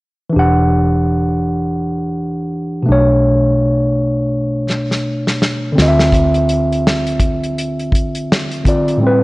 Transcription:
0.29 tine electric piano E3 D4
0.36 fingered electric bass E1, tine electric piano G4 F#5
2.83 tine electric piano B2 A3
2.89 fingered electric bass B1, tine electric piano D4 C#5
4.70 snare
4.91 snare
5.27 snare
5.42 snare
5.72 tine electric piano D3 C4
5.78 fingered electric bass D2, tine electric piano F4 D#5, snare
5.88 tine electric piano E5
5.99 snare
6.12 kick, closed hi-hat
6.34 closed hi-hat
6.49 closed hi-hat
6.72 closed hi-hat
6.87 snare
7.07 closed hi-hat
7.20 kick, closed hi-hat
7.44 closed hi-hat
7.58 closed hi-hat
7.79 closed hi-hat
7.92 kick, closed hi-hat
8.15 closed hi-hat
8.32 snare
8.51 closed hi-hat
8.64 tine electric piano D3 C4 F4, kick, closed hi-hat
8.68 tine electric piano D5
8.88 closed hi-hat
8.97 tine electric piano A2 G3
9.03 tine electric piano C4 B4

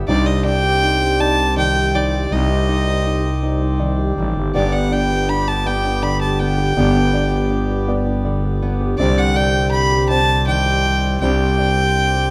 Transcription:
Already playing: felt piano B3 G4, steel-string acoustic guitar G4
0.08 fm bass C2, steel-string acoustic guitar C3 G3 D4 G4, harmonium C4 D5, felt piano D#4 D5, fiddle D5
0.26 fiddle D#5
0.45 steel-string acoustic guitar D4, felt piano D5, fiddle G5
0.64 felt piano G4
0.83 felt piano D#4
1.01 felt piano G4
1.20 felt piano D#4 D5, fiddle A5
1.57 steel-string acoustic guitar D#3, felt piano D5, fiddle G5
1.76 felt piano G4
1.95 steel-string acoustic guitar G3, felt piano D#4, fiddle D5
2.13 felt piano G4
2.31 fm bass C2, steel-string acoustic guitar C3 G3 D#4 G4, felt piano D#4, fiddle D#5
2.50 felt piano D#4
2.69 steel-string acoustic guitar D#4
2.87 felt piano G4
3.06 felt piano D#4
3.24 felt piano G4
3.43 felt piano D#4
3.62 felt piano D#4
3.80 steel-string acoustic guitar D#3, felt piano D5
3.99 felt piano G4
4.16 fm bass A1, steel-string acoustic guitar G3, felt piano D#4
4.36 fm bass G1, felt piano G4
4.54 fm bass G1, steel-string acoustic guitar G2 B3 D4 G4, harmonium B3 G4, felt piano B3 D5, fiddle D5
4.73 felt piano D4, fiddle F#5
4.92 steel-string acoustic guitar D4, felt piano D5, fiddle G5
5.10 felt piano G4
5.28 felt piano D4, fiddle B5
5.47 felt piano G4, fiddle A5
5.66 felt piano B3 D5, fiddle G5
5.85 felt piano D4
6.03 steel-string acoustic guitar D3, felt piano D5, fiddle B5
6.21 felt piano G4, fiddle A5
6.40 steel-string acoustic guitar B3, felt piano D4, fiddle G5
6.58 felt piano G4
6.77 fm bass G1, steel-string acoustic guitar G2 B3 D4 G4, felt piano B3 D5
6.96 felt piano D4
7.14 steel-string acoustic guitar D4, felt piano D5
7.32 felt piano G4
7.51 felt piano D4
7.70 felt piano G4
7.88 felt piano B3 D5
8.06 felt piano D4
8.25 steel-string acoustic guitar D3, felt piano D5
8.44 felt piano G4
8.62 steel-string acoustic guitar B3, felt piano D4
8.81 felt piano G4
8.98 fm bass C2, steel-string acoustic guitar C3 G3 D4, felt piano C4 D5, harmonium C4 D5, fiddle D5
9.02 steel-string acoustic guitar G4
9.18 fiddle F#5
9.36 steel-string acoustic guitar D4, felt piano D5, fiddle G5
9.55 felt piano G4
9.71 fiddle B5
9.92 felt piano G4
10.09 felt piano C4 D5, fiddle A5
10.47 steel-string acoustic guitar D#3, felt piano D5, fiddle G5
10.66 felt piano G4
10.86 steel-string acoustic guitar G3
11.04 felt piano G4
11.21 fm bass C2, steel-string acoustic guitar C3 G3 D4, felt piano C4 D5, fiddle G5
11.25 steel-string acoustic guitar G4
11.59 steel-string acoustic guitar D4, felt piano D5
11.78 felt piano G4
12.15 felt piano G4

